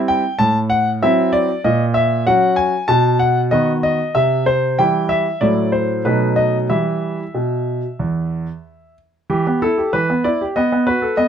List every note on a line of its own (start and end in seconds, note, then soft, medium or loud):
0.00 0.21 G3 soft
0.00 0.22 C4 soft
0.00 0.22 E4 soft
0.08 0.39 G5 medium
0.39 1.00 A2 medium
0.39 0.57 A5 medium
0.70 0.89 F#5 medium
1.02 1.47 F#3 soft
1.02 1.48 C4 soft
1.02 1.48 E4 soft
1.02 1.31 E5 medium
1.33 1.61 D5 medium
1.64 2.25 A#2 medium
1.64 1.83 D#5 medium
1.94 2.23 E5 medium
2.26 2.72 F#3 soft
2.26 2.72 C#4 soft
2.26 2.72 F#4 soft
2.26 2.55 F#5 medium
2.56 2.88 G#5 medium
2.88 3.50 B2 medium
2.88 3.17 A5 medium
3.19 3.39 F#5 medium
3.51 3.98 D#3 soft
3.51 3.98 B3 soft
3.51 3.98 F#4 soft
3.51 3.71 D#5 medium
3.83 4.12 D#5 medium
4.15 4.77 C3 soft
4.15 4.44 E5 medium
4.46 4.79 C5 medium
4.79 5.24 E3 soft
4.79 5.25 G3 soft
4.79 5.25 E4 soft
4.79 5.11 G5 medium
5.09 5.41 E5 medium
5.41 6.03 A2 soft
5.41 6.01 F#3 soft
5.41 6.01 A3 soft
5.41 6.01 E4 soft
5.41 5.70 D5 medium
5.72 6.05 C5 medium
6.05 6.68 B2 soft
6.05 6.66 F#3 soft
6.05 6.66 A3 soft
6.05 6.67 D#4 soft
6.05 6.37 B4 medium
6.36 6.56 D#5 medium
6.70 7.16 E3 soft
6.70 7.23 G3 soft
6.70 7.22 E4 soft
6.70 8.94 E5 medium
7.35 7.80 B2 soft
7.99 8.45 E2 soft
9.30 9.45 E3 medium
9.30 9.58 G4 medium
9.47 9.63 B3 soft
9.62 9.78 E4 soft
9.62 9.90 A4 medium
9.78 9.94 G4 soft
9.93 10.08 E3 soft
9.93 10.25 B4 medium
10.10 10.26 B3 soft
10.24 10.41 E4 soft
10.24 10.43 D5 medium
10.41 10.57 G4 soft
10.56 10.71 B3 soft
10.56 10.84 D#5 medium
10.72 10.89 B3 soft
10.87 11.04 F#4 soft
10.87 11.15 B4 medium
11.02 11.19 A4 soft
11.17 11.28 B3 soft
11.17 11.28 D#5 medium